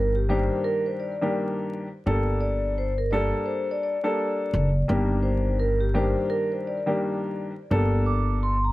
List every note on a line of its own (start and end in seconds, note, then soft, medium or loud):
0.00 0.48 G1 loud
0.00 0.23 G2 medium
0.00 0.23 D#3 medium
0.00 0.23 A#3 medium
0.00 0.23 D4 medium
0.00 0.23 G4 medium
0.00 0.13 A#4 medium
0.16 0.28 G4 medium
0.29 1.13 G2 loud
0.29 1.13 D#3 medium
0.29 1.13 A#3 medium
0.29 1.13 D4 medium
0.29 1.13 G4 loud
0.29 0.62 C5 medium
0.64 0.84 A#4 loud
0.86 0.99 C5 medium
1.00 1.32 D5 medium
1.21 1.85 G2 medium
1.21 1.86 D#3 medium
1.21 1.86 A#3 medium
1.21 1.86 D4 medium
1.21 1.86 G4 loud
2.06 3.30 G1 loud
2.06 2.90 G3 medium
2.06 2.90 A#3 medium
2.06 2.90 D4 medium
2.06 2.90 A4 loud
2.41 2.73 D5 medium
2.78 2.97 C5 medium
2.98 3.11 A#4 medium
3.11 3.96 G3 loud
3.11 3.96 A#3 medium
3.11 3.96 D4 medium
3.11 3.96 A4 loud
3.11 3.43 D5 medium
3.46 3.66 C5 medium
3.71 3.82 D5 medium
3.83 4.85 D5 medium
4.03 4.68 G3 medium
4.03 4.68 A#3 medium
4.03 4.68 D4 medium
4.03 4.68 A4 loud
4.54 4.84 F#1 loud
4.88 6.12 G1 loud
4.88 5.88 G2 medium
4.88 5.88 D#3 medium
4.88 5.88 A#3 medium
4.88 5.88 D4 medium
4.88 5.88 G4 medium
5.23 5.55 C5 medium
5.60 5.79 A#4 medium
5.81 5.93 G4 medium
5.94 6.78 G2 medium
5.94 6.78 D#3 medium
5.94 6.78 A#3 medium
5.94 6.78 D4 medium
5.94 6.78 G4 loud
5.94 6.27 C5 medium
6.30 6.49 A#4 loud
6.52 6.64 C5 medium
6.67 6.98 D5 medium
6.86 7.50 G2 medium
6.86 7.50 D#3 medium
6.86 7.50 A#3 medium
6.86 7.50 D4 medium
6.86 7.51 G4 loud
7.71 8.72 G1 loud
7.71 8.54 G3 medium
7.71 8.55 A#3 medium
7.71 8.55 D4 medium
7.71 8.55 A4 loud
8.06 8.38 D6 medium
8.43 8.62 C6 medium
8.64 8.72 A#5 medium